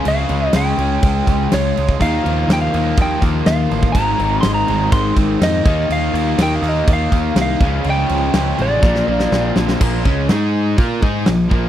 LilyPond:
<<
  \new Staff \with { instrumentName = "Lead electric guitar" } { \time 4/4 \key ees \lydian \tempo 4 = 123 f''4 g''2 des''4 | f''4 g''16 f''8. g''8 r8 f''4 | bes''4 c'''16 bes''8. c'''8 r8 ees''4 | f''4 g''16 f''16 ees''8 f''4 f''4 |
g''4. d''2 r8 | r1 | }
  \new Staff \with { instrumentName = "Distorted electric guitar" } { \time 4/4 \key ees \lydian <des aes des' f' aes'>2.~ <des aes des' f' aes'>8 r8 | <ees f bes f' bes'>1 | <aes, ees aes c' ees' aes'>2.~ <aes, ees aes c' ees' aes'>8 <ees bes ees' f'>8~ | <ees bes ees' f'>2.~ <ees bes ees' f'>8 <des f aes des' f'>8~ |
<des f aes des' f'>2 <bes, d bes d' f'>2 | <bes, f bes>8 <des aes des'>8 <aes ees' aes'>4 <bes f' bes'>8 <aes ees' aes'>8 <bes, f>8 <bes, f bes>8 | }
  \new Staff \with { instrumentName = "Distorted electric guitar" } { \clef bass \time 4/4 \key ees \lydian <des aes des'>4 <des aes des'>2~ <des aes des'>8 r8 | <ees bes ees'>4. <ees bes ees'>2~ <ees bes ees'>8 | <aes, ees aes>4. <aes, ees aes>2 <ees bes ees'>8~ | <ees bes ees'>4 <ees bes ees'>2~ <ees bes ees'>8 <des aes des'>8~ |
<des aes des'>4 <des aes des'>4 <bes, f bes>4. <bes, f bes>8 | <bes, f bes>8 <des aes des'>8 <aes ees' aes'>4 <bes f' bes'>8 <aes ees' aes'>8 <bes, f>8 <bes, f bes>8 | }
  \new Staff \with { instrumentName = "Overdriven electric guitar" } { \clef bass \time 4/4 \key ees \lydian des8 aes8 aes8 des'8 aes8 des'8 f'8 aes8 | ees8 f8 f8 bes8 f8 bes8 f'8 f8 | aes,8 ees8 aes8 c'8 aes8 c'8 ees'8 ees8 | ees8 bes8 ees8 bes8 ees8 bes8 ees'8 des8 |
des8 f8 f8 aes8 bes,8 bes8 c'8 d8 | <bes, f bes>8 <des aes des'>8 <aes ees' aes'>4 <bes f' bes'>8 <aes ees' aes'>8 <bes, f>8 <bes, f bes>8 | }
  \new Staff \with { instrumentName = "Picked electric bass" } { \clef bass \time 4/4 \key ees \lydian des,8 des,8 des,8 des,8 des,8 des,8 des,8 des,8 | ees,8 ees,8 ees,8 ees,8 ees,8 ees,8 ees,8 a,,8 | aes,,8 aes,,8 aes,,8 aes,,8 aes,,8 aes,,8 f,8 ees,8 | ees,8 ees,8 ees,8 ees,8 ees,8 ees,8 c,8 des,8 |
des,8 des,8 des,8 a,,8 bes,,8 bes,,8 bes,,8 bes,,8 | bes,,8 des,8 aes,4 bes,8 aes,8 bes,,8 bes,,8 | }
  \new DrumStaff \with { instrumentName = "Drums" } \drummode { \time 4/4 cymc8 cymc8 <cymc sn>8 cymc8 <cymc bd>8 <cymc bd>8 <cymc sn>8 cymc16 bd16 | <cymc bd>8 cymc8 <cymc sn>8 cymc8 <cymc bd>8 <cymc bd>8 <cymc sn>8 cymc16 bd16 | <cymc bd>8 cymc8 <cymc sn>8 cymc8 <cymc bd>8 <cymc bd>8 <cymc sn>8 <cymc bd>8 | cymc8 cymc8 <cymc sn>8 cymc8 <cymc bd>8 <cymc bd>8 <cymc sn>8 <cymc bd>8 |
cymc8 cymc8 <cymc sn>8 cymc8 <bd sn>16 sn8 sn16 sn8 sn16 sn16 | <cymc bd>8 bd8 <cymc sn>4 <cymc bd>8 bd8 <cymc sn>8 bd8 | }
>>